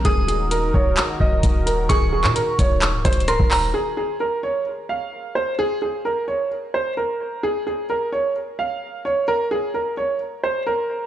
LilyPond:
<<
  \new Staff \with { instrumentName = "Synth bell" } { \time 4/4 \key ees \dorian \tempo 4 = 130 ees'''1 | des'''2. c'''8 bes''8 | r1 | r1 |
r1 | r1 | }
  \new Staff \with { instrumentName = "Grand piano" } { \time 4/4 \key ees \dorian aes'8 aes'8 bes'8 des''8 r8 ees''4 bes'8 | aes'8 aes'8 bes'8 des''8 r8 c''8 bes'4 | aes'8 aes'8 bes'8 des''8 r8 f''4 c''8 | aes'8 aes'8 bes'8 des''8 r8 c''8 bes'4 |
aes'8 aes'8 bes'8 des''8 r8 f''4 des''8 | bes'8 aes'8 bes'8 des''8 r8 c''8 bes'4 | }
  \new Staff \with { instrumentName = "Analog synth pad" } { \time 4/4 \key ees \dorian <ees ees' ges' bes'>1~ | <ees ees' ges' bes'>1 | r1 | r1 |
r1 | r1 | }
  \new Staff \with { instrumentName = "808-style bass" } { \clef bass \time 4/4 \key ees \dorian ees,,4. ees,,8 r8 ees,,8 ees,,4 | ees,,8. bes,16 r8 ees,,8. des,,16 ees,,8 des,,16 ees,,8. | r1 | r1 |
r1 | r1 | }
  \new DrumStaff \with { instrumentName = "Drums" } \drummode { \time 4/4 <hh bd>8 hh8 hh8 bd8 <hc hh>8 bd8 <hh bd>8 hh8 | <hh bd>8. hc16 hh8 <hh bd>8 \tuplet 3/2 { <hc hh>16 r16 r16 <hh bd>16 hh16 hh16 } <hh ss>16 bd16 <hc hho>8 | r4 r4 r4 r4 | r4 r4 r4 r4 |
r4 r4 r4 r4 | r4 r4 r4 r4 | }
>>